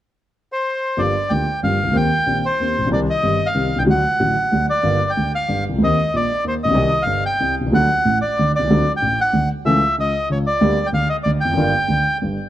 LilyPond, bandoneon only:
\new Staff \with { instrumentName = "Bandoneon" } { \time 3/4 \key g \minor \tempo 4 = 187 r4. c''4. | d''4 g''4 f''4 | g''4. c''4. | d''8 ees''8~ \tuplet 3/2 { ees''4 f''8~ f''4 g''8 } |
fis''2~ fis''8 d''8~ | d''8. g''8. f''4 r8 | ees''4 d''4 c''8 ees''8~ | ees''8. f''8. g''4 r8 |
fis''4. d''4 d''8~ | d''8. g''8. fis''4 r8 | e''4 ees''4 cis''8 d''8~ | d''8. g''16 f''8 ees''8 d''8 g''8~ |
g''2 r4 | }